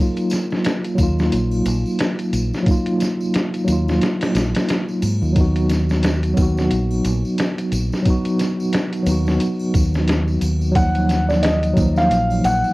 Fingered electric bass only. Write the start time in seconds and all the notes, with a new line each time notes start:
0.98 D#2
1.32 A#1
1.66 A#1
2.33 A#1
3.68 D#2
4.35 A#1
5.02 G#2
5.22 D#2
6.37 D#2
6.72 A#1
7.05 A#1
7.72 A#1
9.07 D#2
9.74 D#2
10.41 D#2
11.77 D#2
12.10 A#1
12.44 A#1